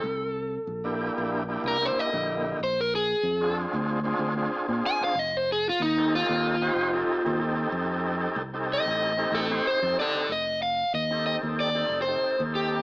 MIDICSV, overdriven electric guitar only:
0, 0, Header, 1, 2, 480
1, 0, Start_track
1, 0, Tempo, 641711
1, 25, Time_signature, 4, 2, 24, 8
1, 9589, End_track
2, 0, Start_track
2, 0, Title_t, "Overdriven electric guitar"
2, 0, Program_c, 0, 29
2, 0, Note_on_c, 0, 69, 94
2, 971, Note_off_c, 0, 69, 0
2, 1254, Note_on_c, 0, 70, 79
2, 1386, Note_off_c, 0, 70, 0
2, 1386, Note_on_c, 0, 72, 87
2, 1491, Note_off_c, 0, 72, 0
2, 1491, Note_on_c, 0, 75, 94
2, 1944, Note_off_c, 0, 75, 0
2, 1971, Note_on_c, 0, 72, 84
2, 2088, Note_off_c, 0, 72, 0
2, 2099, Note_on_c, 0, 70, 95
2, 2192, Note_off_c, 0, 70, 0
2, 2208, Note_on_c, 0, 68, 102
2, 2662, Note_off_c, 0, 68, 0
2, 3638, Note_on_c, 0, 80, 113
2, 3760, Note_off_c, 0, 80, 0
2, 3771, Note_on_c, 0, 77, 94
2, 3883, Note_off_c, 0, 77, 0
2, 3883, Note_on_c, 0, 75, 110
2, 4016, Note_off_c, 0, 75, 0
2, 4016, Note_on_c, 0, 72, 104
2, 4109, Note_off_c, 0, 72, 0
2, 4131, Note_on_c, 0, 68, 98
2, 4247, Note_off_c, 0, 68, 0
2, 4258, Note_on_c, 0, 65, 80
2, 4351, Note_off_c, 0, 65, 0
2, 4355, Note_on_c, 0, 63, 91
2, 4581, Note_off_c, 0, 63, 0
2, 4602, Note_on_c, 0, 65, 101
2, 5523, Note_off_c, 0, 65, 0
2, 6533, Note_on_c, 0, 75, 101
2, 6991, Note_on_c, 0, 69, 85
2, 7215, Note_off_c, 0, 75, 0
2, 7233, Note_off_c, 0, 69, 0
2, 7236, Note_on_c, 0, 72, 103
2, 7251, Note_off_c, 0, 72, 0
2, 7258, Note_on_c, 0, 72, 89
2, 7472, Note_off_c, 0, 72, 0
2, 7478, Note_on_c, 0, 74, 96
2, 7490, Note_on_c, 0, 69, 100
2, 7708, Note_off_c, 0, 69, 0
2, 7716, Note_off_c, 0, 74, 0
2, 7720, Note_on_c, 0, 75, 104
2, 7944, Note_off_c, 0, 75, 0
2, 7947, Note_on_c, 0, 77, 93
2, 8167, Note_off_c, 0, 77, 0
2, 8187, Note_on_c, 0, 75, 91
2, 8416, Note_off_c, 0, 75, 0
2, 8425, Note_on_c, 0, 75, 93
2, 8489, Note_off_c, 0, 75, 0
2, 8678, Note_on_c, 0, 74, 87
2, 8987, Note_off_c, 0, 74, 0
2, 8990, Note_on_c, 0, 72, 80
2, 9283, Note_off_c, 0, 72, 0
2, 9390, Note_on_c, 0, 67, 72
2, 9589, Note_off_c, 0, 67, 0
2, 9589, End_track
0, 0, End_of_file